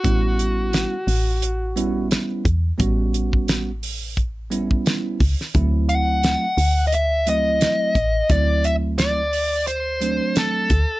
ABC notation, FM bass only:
X:1
M:4/4
L:1/16
Q:"Swing 16ths" 1/4=87
K:D
V:1 name="FM bass" clef=bass
A,,,6 A,,,8 E,,2 | A,,,12- A,,,2 C,, z | D,,6 D,,8 A,,,2 | D,,12- D,,2 D,, z |]